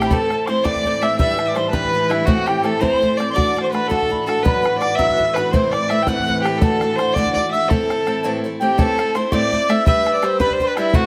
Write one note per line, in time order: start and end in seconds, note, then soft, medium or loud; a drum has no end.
0.00 0.10 A3 medium
0.00 0.10 C4 medium
0.00 0.11 E4 medium
0.00 0.12 G4 medium
0.00 0.11 A4 medium
0.00 bodhran medium
0.06 0.14 B5 medium
0.10 0.31 A2 medium
0.10 4.44 A2 medium
0.10 4.43 E3 medium
0.10 0.31 E3 medium
0.10 0.29 A3 medium
0.10 0.30 C4 medium
0.10 0.30 E4 medium
0.10 0.46 A4 medium
0.10 0.31 A4 medium
0.10 0.47 A5 medium
0.10 bodhran medium
0.30 0.46 A3 soft
0.30 0.46 C4 medium
0.30 0.47 E4 soft
0.30 0.48 A4 soft
0.30 bodhran medium
0.46 0.63 A3 medium
0.46 0.64 C4 medium
0.46 0.64 E4 medium
0.46 0.64 A4 medium
0.46 0.65 C5 medium
0.46 0.66 C6 medium
0.46 0.50 D6 soft
0.46 bodhran soft
0.63 0.85 A2 medium
0.63 0.85 E3 medium
0.63 0.84 A3 medium
0.63 0.85 C4 medium
0.63 0.85 E4 medium
0.63 0.85 A4 medium
0.63 1.03 D5 loud
0.63 1.01 D6 medium
0.63 bodhran medium
0.75 bodhran soft
0.85 1.00 A3 soft
0.85 1.01 C4 medium
0.85 1.01 E4 soft
0.85 1.02 A4 medium
0.85 bodhran soft
1.02 1.18 A3 medium
1.02 1.19 C4 medium
1.02 1.19 E4 medium
1.02 1.19 A4 medium
1.02 1.19 E5 medium
1.02 1.18 E6 medium
1.02 bodhran medium
1.18 1.36 G3 medium
1.18 1.36 D4 medium
1.18 1.37 G4 medium
1.18 1.38 B4 medium
1.18 1.46 E5 loud
1.18 1.49 E6 medium
1.18 bodhran medium
1.37 1.54 G3 soft
1.37 1.54 D4 medium
1.37 1.55 G4 medium
1.37 1.55 B4 medium
1.37 bodhran medium
1.46 1.56 D5 medium
1.46 1.47 E5 medium
1.46 1.58 D6 medium
1.54 1.72 G3 medium
1.54 1.72 D4 medium
1.54 1.72 G4 medium
1.54 1.73 B4 medium
1.54 1.70 C5 medium
1.54 1.69 C6 medium
1.54 bodhran soft
1.67 2.11 B4 medium
1.67 1.75 A5 medium
1.73 1.92 G3 medium
1.73 1.92 D4 medium
1.73 1.93 G4 medium
1.73 1.94 B4 medium
1.73 2.12 B5 medium
1.73 bodhran medium
1.84 bodhran soft
1.93 2.08 G3 medium
1.93 2.09 D4 medium
1.93 2.09 G4 medium
1.93 2.10 B4 medium
2.09 2.26 G3 medium
2.09 2.27 D4 medium
2.09 2.27 E4 medium
2.09 2.27 G4 medium
2.09 2.27 B4 medium
2.09 2.27 E5 medium
2.09 bodhran medium
2.25 2.47 A2 medium
2.25 2.47 E3 medium
2.25 2.45 A3 medium
2.25 2.46 C4 medium
2.25 2.46 E4 medium
2.25 2.48 F#4 medium
2.25 2.47 A4 medium
2.25 2.50 F#5 medium
2.25 bodhran medium
2.46 2.62 A3 medium
2.46 2.63 C4 medium
2.46 2.63 E4 soft
2.46 2.64 G4 medium
2.46 2.64 A4 medium
2.46 2.68 G5 medium
2.46 bodhran medium
2.62 2.80 A3 medium
2.62 2.80 C4 medium
2.62 2.81 E4 medium
2.62 2.81 A4 medium
2.62 2.85 A5 medium
2.62 bodhran soft
2.80 3.01 A2 medium
2.80 3.01 E3 medium
2.80 3.01 A3 medium
2.80 3.01 C4 medium
2.80 3.01 E4 medium
2.80 3.02 A4 medium
2.80 3.18 C5 loud
2.80 3.20 C6 medium
2.80 bodhran medium
2.93 bodhran soft
3.02 3.18 A3 soft
3.02 3.19 C4 medium
3.02 3.19 E4 soft
3.02 3.19 A4 medium
3.02 bodhran soft
3.17 3.35 A3 medium
3.17 3.35 C4 medium
3.17 3.35 E4 medium
3.17 3.35 A4 medium
3.17 3.32 D5 medium
3.17 3.29 D6 medium
3.17 bodhran soft
3.29 3.61 D5 medium
3.29 3.36 C6 medium
3.34 3.55 D3 medium
3.34 3.53 A3 medium
3.34 3.54 D4 medium
3.34 3.55 F#4 medium
3.34 3.55 A4 medium
3.34 3.66 D6 medium
3.34 bodhran medium
3.54 3.71 A3 soft
3.54 3.72 D4 medium
3.54 3.72 F#4 soft
3.54 3.73 A4 medium
3.58 3.71 C5 medium
3.58 bodhran soft
3.64 3.73 C6 medium
3.72 3.88 A3 medium
3.72 3.89 D4 medium
3.72 3.90 F#4 medium
3.72 3.90 A4 medium
3.72 3.90 B4 medium
3.72 3.92 B5 medium
3.72 bodhran soft
3.88 4.10 D3 medium
3.88 4.08 A3 medium
3.88 4.09 D4 medium
3.88 4.09 F#4 medium
3.88 4.25 A4 loud
3.88 4.10 A4 medium
3.88 4.12 A5 medium
3.88 bodhran medium
4.02 bodhran soft
4.09 4.25 A3 soft
4.09 4.26 D4 medium
4.09 4.26 F#4 soft
4.09 4.27 A4 soft
4.09 4.28 B5 medium
4.09 bodhran soft
4.26 4.44 A3 medium
4.26 4.44 D4 medium
4.26 4.44 F#4 medium
4.26 4.44 A4 medium
4.26 4.45 A4 medium
4.26 4.44 A5 medium
4.26 bodhran medium
4.43 8.82 A2 medium
4.43 4.64 B2 medium
4.43 8.82 E3 medium
4.43 4.65 F#3 medium
4.43 4.61 B3 medium
4.43 4.62 D4 medium
4.43 4.63 F#4 medium
4.43 4.78 B4 medium
4.43 4.63 B4 medium
4.43 4.82 B5 medium
4.43 bodhran medium
4.63 4.79 B3 medium
4.63 4.81 D4 soft
4.63 4.81 F#4 medium
4.63 4.81 B4 medium
4.63 bodhran medium
4.79 4.97 B3 medium
4.79 4.97 D4 medium
4.79 4.98 B4 medium
4.79 4.97 D5 loud
4.79 4.98 D6 medium
4.79 bodhran soft
4.83 4.98 F#4 medium
4.96 5.19 B2 medium
4.96 5.18 F#3 medium
4.96 5.16 B3 medium
4.96 5.17 D4 medium
4.96 5.17 F#4 medium
4.96 5.18 B4 medium
4.96 5.35 E5 loud
4.96 5.14 E6 medium
4.96 bodhran medium
5.09 5.27 F#6 medium
5.09 bodhran soft
5.17 5.35 B3 medium
5.17 5.35 D4 medium
5.17 5.36 F#4 soft
5.17 5.36 B4 medium
5.17 bodhran soft
5.25 5.37 E6 medium
5.34 5.53 B3 medium
5.34 5.53 D4 medium
5.34 5.54 F#4 medium
5.34 5.53 B4 medium
5.34 5.53 B5 medium
5.34 bodhran medium
5.38 5.53 B4 medium
5.51 5.73 C3 medium
5.51 5.73 E3 medium
5.51 5.71 A3 medium
5.51 5.71 C4 medium
5.51 5.73 E4 medium
5.51 5.73 B4 medium
5.51 5.73 C5 medium
5.51 5.74 C6 medium
5.51 bodhran medium
5.72 5.89 A3 soft
5.72 5.90 C4 medium
5.72 5.90 E4 medium
5.72 5.91 B4 soft
5.72 5.91 D5 medium
5.72 5.91 D6 medium
5.72 bodhran medium
5.89 6.06 A3 medium
5.89 6.07 C4 medium
5.89 6.07 E4 medium
5.89 6.07 B4 medium
5.89 6.04 E5 medium
5.89 6.09 E6 medium
5.89 bodhran medium
6.03 6.09 G5 medium
6.07 6.27 C3 medium
6.07 6.27 E3 medium
6.07 6.25 A3 medium
6.07 6.26 C4 medium
6.07 6.27 E4 medium
6.07 6.28 B4 medium
6.07 6.42 F#5 loud
6.07 6.21 F#6 medium
6.07 bodhran medium
6.18 6.33 F#6 medium
6.18 bodhran soft
6.27 6.43 A3 soft
6.27 6.44 C4 soft
6.27 6.45 E4 medium
6.27 6.45 B4 medium
6.27 bodhran soft
6.36 6.45 F#6 medium
6.42 6.60 A3 medium
6.42 6.61 C4 medium
6.42 6.61 E4 medium
6.42 6.60 G4 medium
6.42 6.62 B4 medium
6.42 bodhran medium
6.59 6.81 D3 medium
6.59 6.80 A3 medium
6.59 6.81 D4 medium
6.59 6.81 F#4 medium
6.59 6.97 A4 medium
6.59 bodhran medium
6.63 6.82 A4 medium
6.63 6.99 A5 medium
6.81 6.97 A3 soft
6.81 6.98 D4 medium
6.81 6.99 F#4 soft
6.81 6.99 A4 medium
6.81 bodhran medium
6.95 7.15 A3 medium
6.95 7.16 D4 medium
6.95 7.15 C5 medium
6.95 7.16 C6 medium
6.95 bodhran medium
7.00 7.16 F#4 medium
7.00 7.16 A4 medium
7.13 7.36 D3 medium
7.13 7.35 A3 medium
7.13 7.33 D5 loud
7.13 7.34 D6 medium
7.13 bodhran medium
7.18 7.36 D4 medium
7.18 7.36 F#4 medium
7.18 7.37 A4 medium
7.26 bodhran soft
7.33 7.52 A3 medium
7.33 7.52 D4 medium
7.33 7.50 D5 medium
7.33 7.54 D6 medium
7.33 bodhran soft
7.37 7.53 F#4 medium
7.37 7.54 A4 medium
7.51 7.69 A3 medium
7.51 7.70 D4 medium
7.51 7.70 F#4 medium
7.51 7.70 A4 medium
7.51 7.70 E5 medium
7.51 7.71 E6 medium
7.68 7.90 A2 medium
7.68 7.90 E3 medium
7.68 7.89 A3 medium
7.68 7.89 C4 medium
7.68 7.90 E4 medium
7.68 8.43 A4 loud
7.68 7.90 A4 medium
7.68 8.35 A5 medium
7.68 bodhran medium
7.90 8.05 A3 medium
7.90 8.06 C4 medium
7.90 8.06 E4 soft
7.90 8.07 A4 medium
7.90 bodhran medium
8.06 8.23 A3 medium
8.06 8.23 C4 medium
8.06 8.24 E4 medium
8.06 8.24 A4 medium
8.06 bodhran medium
8.23 8.43 A2 medium
8.23 8.44 E3 medium
8.23 8.43 A3 medium
8.23 8.43 C4 medium
8.23 8.44 E4 loud
8.23 8.44 A4 medium
8.44 8.60 A3 medium
8.44 8.61 C4 medium
8.44 8.61 E4 medium
8.44 8.62 A4 medium
8.59 8.78 A3 medium
8.59 8.77 C4 medium
8.59 8.78 E4 medium
8.59 8.80 G4 medium
8.59 8.78 A4 medium
8.59 8.76 G5 medium
8.78 8.98 A2 medium
8.78 8.98 E3 medium
8.78 8.97 A3 medium
8.78 8.97 C4 medium
8.78 8.98 E4 medium
8.78 9.17 A4 medium
8.78 8.98 A4 medium
8.78 9.16 A5 medium
8.78 bodhran medium
8.98 9.14 A3 medium
8.98 9.14 C4 medium
8.98 9.15 E4 medium
8.98 9.15 A4 medium
8.98 bodhran medium
9.14 9.31 A3 medium
9.14 9.32 C4 medium
9.14 9.32 E4 medium
9.14 9.32 A4 medium
9.14 9.32 C5 medium
9.14 9.33 C6 medium
9.14 bodhran medium
9.32 9.52 A2 medium
9.32 9.52 E3 medium
9.32 9.51 A3 medium
9.32 9.52 C4 medium
9.32 9.52 E4 medium
9.32 9.52 A4 medium
9.32 9.71 D5 loud
9.32 9.71 D6 medium
9.32 bodhran medium
9.52 9.67 A3 medium
9.52 9.68 C4 medium
9.52 9.68 E4 medium
9.52 9.69 A4 medium
9.52 bodhran soft
9.69 9.86 A3 medium
9.69 9.86 C4 medium
9.69 9.86 E4 medium
9.69 9.87 A4 medium
9.69 9.86 E5 medium
9.69 9.86 E6 medium
9.69 bodhran medium
9.86 10.03 G3 medium
9.86 10.05 D4 medium
9.86 10.05 G4 medium
9.86 10.05 B4 medium
9.86 10.13 E5 loud
9.86 10.37 E6 medium
9.86 bodhran medium
10.04 10.21 G3 medium
10.04 10.21 D4 medium
10.04 10.22 G4 medium
10.04 10.22 B4 medium
10.04 bodhran medium
10.14 10.26 D5 medium
10.22 10.38 G3 medium
10.22 10.38 D4 medium
10.22 10.39 G4 medium
10.22 10.39 B4 medium
10.22 10.42 C5 medium
10.22 bodhran medium
10.39 10.59 G3 medium
10.39 10.59 D4 medium
10.39 10.59 G4 medium
10.39 10.60 B4 medium
10.39 10.54 B4 medium
10.39 10.52 B5 medium
10.39 bodhran medium
10.50 10.69 C5 medium
10.50 bodhran soft
10.59 10.76 G3 medium
10.59 10.76 D4 medium
10.59 10.77 G4 medium
10.59 10.78 B4 medium
10.59 10.66 C6 medium
10.59 bodhran soft
10.64 10.76 B4 medium
10.64 10.77 B5 medium
10.76 10.94 G3 medium
10.76 10.94 D4 medium
10.76 10.96 E4 medium
10.76 10.95 G4 medium
10.76 10.94 B4 medium
10.76 10.95 E5 medium
10.76 bodhran medium
10.93 11.06 A2 medium
10.93 11.06 E3 medium
10.93 11.06 A3 medium
10.93 11.06 C4 medium
10.93 11.06 E4 medium
10.93 11.06 F#4 loud
10.93 11.06 A4 medium
10.93 11.06 F#5 medium
10.93 bodhran medium